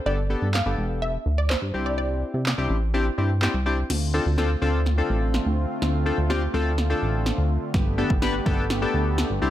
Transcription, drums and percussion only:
0.54 snare medium
0.54 clap loud
1.50 snare medium
1.50 clap loud
2.46 snare medium
2.46 clap loud
3.42 snare medium
3.42 clap loud
3.90 snare soft
3.90 crash medium
4.38 snare medium
4.86 snare medium
5.34 snare medium
5.82 snare medium
6.30 snare medium
6.78 snare medium
7.26 snare medium
7.74 kick loud
7.74 snare medium
8.10 kick medium
8.22 snare medium
8.46 kick loud
8.70 snare medium
9.18 snare medium

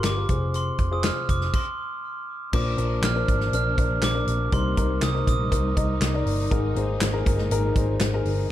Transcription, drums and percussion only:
0.04 snare medium
0.04 clap medium
0.04 closed hi-hat medium
0.29 kick medium
0.29 closed hi-hat medium
0.54 closed hi-hat medium
0.78 kick medium
0.78 closed hi-hat soft
1.04 snare loud
1.04 clap medium
1.04 closed hi-hat medium
1.29 kick medium
1.29 closed hi-hat medium
1.41 snare soft
1.53 kick medium
1.53 crash medium
2.53 kick loud
2.53 crash medium
2.78 closed hi-hat medium
3.03 snare loud
3.03 clap medium
3.03 closed hi-hat medium
3.28 kick medium
3.28 closed hi-hat medium
3.40 snare soft
3.53 closed hi-hat medium
3.78 kick medium
3.78 closed hi-hat medium
4.02 snare medium
4.02 clap medium
4.02 closed hi-hat medium
4.28 closed hi-hat medium
4.52 kick medium
4.52 closed hi-hat medium
4.77 kick medium
4.77 closed hi-hat medium
5.02 snare loud
5.02 clap medium
5.02 closed hi-hat medium
5.27 kick medium
5.27 closed hi-hat medium
5.52 kick medium
5.52 closed hi-hat medium
5.77 kick medium
5.77 closed hi-hat medium
6.01 snare medium
6.01 clap medium
6.01 closed hi-hat medium
6.27 open hi-hat medium
6.51 kick loud
6.51 closed hi-hat medium
6.76 closed hi-hat medium
7.01 snare loud
7.01 clap medium
7.01 closed hi-hat loud
7.26 kick medium
7.26 closed hi-hat medium
7.38 snare soft
7.51 closed hi-hat medium
7.76 kick loud
7.76 closed hi-hat medium
8.00 snare loud
8.00 clap medium
8.00 closed hi-hat loud
8.25 open hi-hat medium

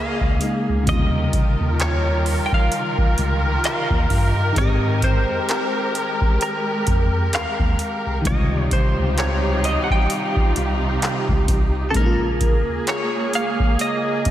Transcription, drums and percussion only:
0.21 kick medium
0.41 closed hi-hat medium
0.87 kick loud
0.87 closed hi-hat medium
1.33 kick loud
1.33 closed hi-hat medium
1.80 clap loud
1.80 closed hi-hat medium
2.26 open hi-hat medium
2.52 kick medium
2.72 closed hi-hat medium
2.98 kick loud
3.18 closed hi-hat medium
3.64 clap loud
3.64 closed hi-hat medium
3.90 kick medium
4.10 kick medium
4.10 open hi-hat medium
4.56 kick loud
4.56 closed hi-hat medium
5.02 kick medium
5.02 closed hi-hat medium
5.49 clap loud
5.49 closed hi-hat medium
5.95 closed hi-hat medium
6.21 kick medium
6.41 closed hi-hat medium
6.87 kick loud
6.87 closed hi-hat medium
7.33 clap loud
7.33 closed hi-hat medium
7.59 kick medium
7.79 closed hi-hat medium
8.25 kick loud
8.25 closed hi-hat medium
8.71 kick medium
8.71 closed hi-hat medium
9.18 clap loud
9.18 closed hi-hat medium
9.64 closed hi-hat medium
9.90 kick medium
10.10 closed hi-hat medium
10.36 kick medium
10.56 closed hi-hat medium
11.02 clap loud
11.02 closed hi-hat medium
11.28 kick medium
11.48 kick medium
11.48 closed hi-hat medium
11.94 kick loud
11.94 closed hi-hat medium
12.41 kick medium
12.41 closed hi-hat medium
12.87 clap loud
12.87 closed hi-hat medium
13.33 closed hi-hat medium
13.60 kick medium
13.79 closed hi-hat medium
14.25 kick loud
14.25 closed hi-hat medium

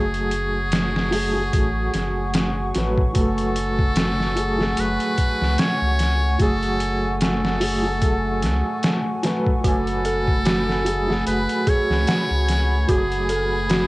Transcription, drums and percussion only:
0.14 closed hi-hat soft
0.31 closed hi-hat medium
0.72 snare loud
0.72 closed hi-hat medium
0.96 snare medium
1.13 open hi-hat medium
1.53 kick loud
1.53 closed hi-hat medium
1.94 snare soft
1.94 closed hi-hat medium
2.34 snare loud
2.34 closed hi-hat medium
2.75 snare medium
2.75 closed hi-hat medium
2.98 kick loud
3.15 kick loud
3.15 closed hi-hat medium
3.38 closed hi-hat soft
3.56 closed hi-hat medium
3.79 kick loud
3.96 snare loud
3.96 closed hi-hat medium
4.20 snare soft
4.37 closed hi-hat medium
4.61 snare soft
4.77 closed hi-hat medium
5.00 closed hi-hat soft
5.18 kick medium
5.18 closed hi-hat medium
5.42 snare soft
5.58 snare loud
5.58 closed hi-hat medium
5.99 snare soft
5.99 closed hi-hat medium
6.40 kick loud
6.40 closed hi-hat medium
6.63 closed hi-hat soft
6.80 closed hi-hat medium
7.21 snare loud
7.21 closed hi-hat medium
7.45 snare medium
7.61 open hi-hat medium
8.02 kick loud
8.02 closed hi-hat medium
8.43 snare soft
8.43 closed hi-hat medium
8.83 snare loud
8.83 closed hi-hat medium
9.23 snare medium
9.23 closed hi-hat medium
9.47 kick medium
9.64 kick loud
9.64 closed hi-hat medium
9.87 closed hi-hat soft
10.05 closed hi-hat medium
10.28 kick loud
10.45 snare loud
10.45 closed hi-hat medium
10.69 snare soft
10.86 closed hi-hat medium
11.10 snare soft
11.27 closed hi-hat medium
11.49 closed hi-hat soft
11.67 kick medium
11.67 closed hi-hat medium
11.91 snare soft
12.07 snare loud
12.07 closed hi-hat medium
12.48 snare soft
12.48 closed hi-hat medium
12.89 kick loud
12.89 closed hi-hat medium
13.12 closed hi-hat soft
13.29 closed hi-hat medium
13.69 snare loud
13.69 closed hi-hat medium

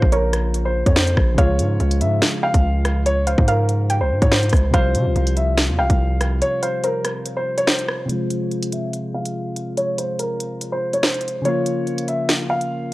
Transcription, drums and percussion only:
0.02 kick loud
0.12 closed hi-hat medium
0.33 cross-stick medium
0.33 closed hi-hat medium
0.54 closed hi-hat medium
0.86 kick medium
0.86 closed hi-hat medium
0.96 finger snap loud
0.96 snare loud
1.07 closed hi-hat medium
1.17 kick medium
1.17 cross-stick loud
1.38 kick loud
1.38 closed hi-hat medium
1.59 closed hi-hat medium
1.80 closed hi-hat soft
1.91 closed hi-hat medium
2.01 closed hi-hat medium
2.22 finger snap loud
2.22 snare loud
2.22 closed hi-hat medium
2.54 kick medium
2.54 closed hi-hat medium
2.85 cross-stick loud
2.85 closed hi-hat medium
3.06 closed hi-hat medium
3.27 closed hi-hat medium
3.38 kick loud
3.48 closed hi-hat medium
3.69 closed hi-hat medium
3.90 closed hi-hat medium
4.22 kick medium
4.22 closed hi-hat medium
4.32 finger snap loud
4.32 snare loud
4.43 closed hi-hat medium
4.50 kick loud
4.50 cross-stick loud
4.50 closed hi-hat medium
4.50 open hi-hat soft
4.57 closed hi-hat medium
4.74 kick loud
4.74 closed hi-hat medium
4.95 closed hi-hat medium
5.16 closed hi-hat soft
5.27 closed hi-hat medium
5.37 closed hi-hat medium
5.58 finger snap loud
5.58 snare loud
5.58 closed hi-hat medium
5.90 kick medium
5.90 closed hi-hat medium
6.21 cross-stick loud
6.21 closed hi-hat medium
6.42 closed hi-hat medium
6.63 closed hi-hat medium
6.84 closed hi-hat medium
7.05 cross-stick medium
7.05 closed hi-hat medium
7.26 closed hi-hat medium
7.58 closed hi-hat medium
7.67 finger snap loud
7.67 snare loud
7.79 closed hi-hat medium
7.89 cross-stick loud
8.09 closed hi-hat medium
8.30 closed hi-hat medium
8.51 closed hi-hat soft
8.63 closed hi-hat medium
8.72 closed hi-hat medium
8.93 closed hi-hat medium
9.25 closed hi-hat medium
9.56 closed hi-hat medium
9.77 closed hi-hat medium
9.98 closed hi-hat medium
10.19 closed hi-hat medium
10.40 closed hi-hat medium
10.61 closed hi-hat medium
10.93 closed hi-hat medium
11.03 finger snap medium
11.03 snare loud
11.14 closed hi-hat medium
11.21 closed hi-hat medium
11.28 closed hi-hat medium
11.45 closed hi-hat medium
11.66 closed hi-hat medium
11.87 closed hi-hat soft
11.98 closed hi-hat medium
12.08 closed hi-hat medium
12.29 finger snap medium
12.29 snare loud
12.29 closed hi-hat medium
12.61 closed hi-hat medium

